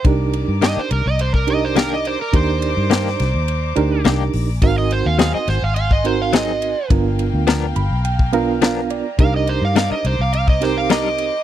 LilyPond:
<<
  \new Staff \with { instrumentName = "String section" } { \time 4/4 \key c \minor \tempo 4 = 105 << { <d'' d'''>1~ | <d'' d'''>1 | <ges'' c'''>1 | <f'' g''>1 |
<c'' d'''>1 | } \\ { bes''1~ | bes''1 | aes''1 | ais''1~ |
ais''1 | } >> }
  \new Staff \with { instrumentName = "Electric slide guitar" } { \time 4/4 \key c \minor r4 ees''16 c''16 bes'16 ees''16 c''16 bes'16 ees''16 c''16 bes'16 ees''16 c''16 bes'16 | c''2. r4 | f''16 ees''16 c''16 f''16 f''16 ees''16 c''16 f''16 f''16 ees''16 c''16 f''16 ees''4 | r1 |
f''16 ees''16 c''16 f''16 f''16 ees''16 c''16 f''16 f''16 ees''16 c''16 f''16 ees''4 | }
  \new Staff \with { instrumentName = "Reed electric piano" } { \time 4/4 \key c \minor << { r1 | r1 | r1 | r4. b''8 g''8 f''8 f''8 d''8 |
r1 | } \\ { <d' ees' g' bes'>4. r4 <d' ees' g' bes'>4~ <d' ees' g' bes'>16 r16 | <d' ees' g' bes'>4. r4 <d' ees' g' bes'>4~ <d' ees' g' bes'>16 r16 | <c' ees' ges' bes'>4. r4 <c' ees' ges' bes'>4~ <c' ees' ges' bes'>16 r16 | <b d' f' ais'>4. r4 <b d' f' ais'>4~ <b d' f' ais'>16 r16 |
<d' ees' g' bes'>4. r4 <c' ees' g' bes'>4~ <c' ees' g' bes'>16 r16 | } >> }
  \new Staff \with { instrumentName = "Clean electric guitar" } { \time 4/4 \key c \minor r4 <ees bes d' g'>8 r4. <ees bes d' g'>8 r8 | r4 <ees bes d' g'>8 r4. <ees bes d' g'>8 r8 | r4 <ges c' ees' aes'>8 r4. <ges c' ees' aes'>8 r8 | r4 <f b d' ais'>8 r4. <f b d' ais'>8 r8 |
r4 <g d' ees' bes'>8 r4. <g d' ees' bes'>8 r8 | }
  \new Staff \with { instrumentName = "Fingered electric bass" } { \clef bass \time 4/4 \key c \minor c,8. g,8 r16 c,16 c,2 r16 | ees,8. g,8. c,16 ees,8. d,8 c,8 bes,,8 | aes,,8. ees,8 r16 aes,,16 aes,,2 r16 | g,,8. d,8. g,,16 b,,2 r16 |
c,8. g,8 r16 c,16 c,2 r16 | }
  \new DrumStaff \with { instrumentName = "Drums" } \drummode { \time 4/4 <bd rb>8 rb8 <rb sn>8 rb8 rb16 bd16 rb8 <rb sn>8 rb8 | <bd rb>8 rb8 <rb sn>16 sn16 <rb sn>8 rb8 rb8 <rb sn>8 hho8 | <bd rb>8 rb8 <rb sn>8 <rb sn>8 rb16 bd16 rb8 <rb sn>8 rb8 | <bd rb>8 rb8 <rb sn>8 rb8 rb16 bd16 rb8 <rb sn>8 rb8 |
<bd rb>8 rb8 <rb sn>8 rb8 rb16 bd16 <rb sn>8 <rb sn>8 rb8 | }
>>